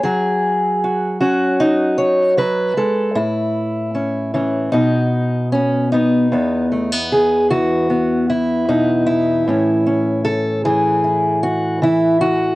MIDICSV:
0, 0, Header, 1, 2, 480
1, 0, Start_track
1, 0, Key_signature, 4, "major"
1, 0, Tempo, 785340
1, 28, Time_signature, 4, 2, 24, 8
1, 7671, End_track
2, 0, Start_track
2, 0, Title_t, "Steel-string acoustic guitar"
2, 0, Program_c, 0, 25
2, 0, Note_on_c, 0, 61, 63
2, 19, Note_on_c, 0, 68, 89
2, 27, Note_on_c, 0, 54, 74
2, 511, Note_on_c, 0, 66, 48
2, 728, Note_off_c, 0, 66, 0
2, 733, Note_off_c, 0, 68, 0
2, 736, Note_on_c, 0, 66, 92
2, 737, Note_off_c, 0, 61, 0
2, 739, Note_on_c, 0, 61, 62
2, 977, Note_on_c, 0, 63, 88
2, 1209, Note_on_c, 0, 73, 95
2, 1443, Note_off_c, 0, 54, 0
2, 1448, Note_off_c, 0, 61, 0
2, 1451, Note_on_c, 0, 54, 63
2, 1453, Note_off_c, 0, 73, 0
2, 1455, Note_off_c, 0, 66, 0
2, 1455, Note_on_c, 0, 71, 95
2, 1690, Note_off_c, 0, 54, 0
2, 1692, Note_on_c, 0, 56, 59
2, 1695, Note_off_c, 0, 63, 0
2, 1695, Note_on_c, 0, 69, 76
2, 1925, Note_off_c, 0, 71, 0
2, 1926, Note_on_c, 0, 45, 65
2, 1927, Note_on_c, 0, 64, 76
2, 1933, Note_off_c, 0, 56, 0
2, 1935, Note_off_c, 0, 69, 0
2, 2412, Note_on_c, 0, 61, 45
2, 2647, Note_off_c, 0, 61, 0
2, 2652, Note_on_c, 0, 52, 58
2, 2655, Note_on_c, 0, 61, 45
2, 2861, Note_off_c, 0, 45, 0
2, 2866, Note_off_c, 0, 61, 0
2, 2885, Note_on_c, 0, 63, 101
2, 2890, Note_off_c, 0, 64, 0
2, 2894, Note_on_c, 0, 47, 67
2, 2895, Note_off_c, 0, 52, 0
2, 3374, Note_off_c, 0, 63, 0
2, 3376, Note_on_c, 0, 61, 79
2, 3391, Note_on_c, 0, 59, 45
2, 3616, Note_off_c, 0, 61, 0
2, 3619, Note_on_c, 0, 63, 84
2, 3623, Note_off_c, 0, 59, 0
2, 3630, Note_on_c, 0, 59, 57
2, 3840, Note_off_c, 0, 59, 0
2, 3863, Note_on_c, 0, 40, 70
2, 3864, Note_off_c, 0, 47, 0
2, 3869, Note_on_c, 0, 59, 45
2, 4104, Note_off_c, 0, 59, 0
2, 4106, Note_on_c, 0, 57, 46
2, 4229, Note_off_c, 0, 57, 0
2, 4229, Note_on_c, 0, 59, 35
2, 4353, Note_on_c, 0, 68, 86
2, 4584, Note_off_c, 0, 68, 0
2, 4587, Note_on_c, 0, 66, 85
2, 4590, Note_on_c, 0, 52, 63
2, 4820, Note_off_c, 0, 59, 0
2, 4828, Note_on_c, 0, 59, 46
2, 4829, Note_off_c, 0, 63, 0
2, 5068, Note_off_c, 0, 66, 0
2, 5070, Note_on_c, 0, 64, 83
2, 5308, Note_on_c, 0, 47, 60
2, 5309, Note_on_c, 0, 63, 86
2, 5533, Note_off_c, 0, 64, 0
2, 5540, Note_on_c, 0, 64, 84
2, 5789, Note_off_c, 0, 40, 0
2, 5790, Note_off_c, 0, 63, 0
2, 5791, Note_off_c, 0, 47, 0
2, 5791, Note_on_c, 0, 45, 64
2, 5795, Note_off_c, 0, 59, 0
2, 5798, Note_on_c, 0, 61, 44
2, 6022, Note_off_c, 0, 61, 0
2, 6029, Note_on_c, 0, 61, 47
2, 6260, Note_off_c, 0, 64, 0
2, 6263, Note_on_c, 0, 69, 96
2, 6504, Note_off_c, 0, 52, 0
2, 6507, Note_off_c, 0, 69, 0
2, 6510, Note_on_c, 0, 68, 93
2, 6511, Note_on_c, 0, 52, 61
2, 6747, Note_on_c, 0, 64, 46
2, 6984, Note_off_c, 0, 68, 0
2, 6986, Note_on_c, 0, 66, 86
2, 7216, Note_off_c, 0, 52, 0
2, 7223, Note_on_c, 0, 52, 62
2, 7225, Note_off_c, 0, 64, 0
2, 7227, Note_off_c, 0, 66, 0
2, 7232, Note_on_c, 0, 64, 88
2, 7459, Note_off_c, 0, 64, 0
2, 7461, Note_on_c, 0, 66, 95
2, 7671, Note_off_c, 0, 45, 0
2, 7671, Note_off_c, 0, 52, 0
2, 7671, Note_off_c, 0, 61, 0
2, 7671, Note_off_c, 0, 66, 0
2, 7671, End_track
0, 0, End_of_file